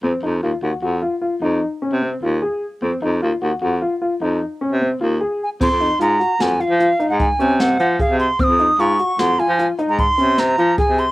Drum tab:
CC |--------------|--------------|x-------------|--------------|
HH |--------------|--------------|-xxxxxxxxxxxxx|xxxxxxxxxxxxxx|
SD |--------------|--------------|----o-----o---|----o-----o---|
BD |--------------|--------------|o-------o---o-|o-------o---o-|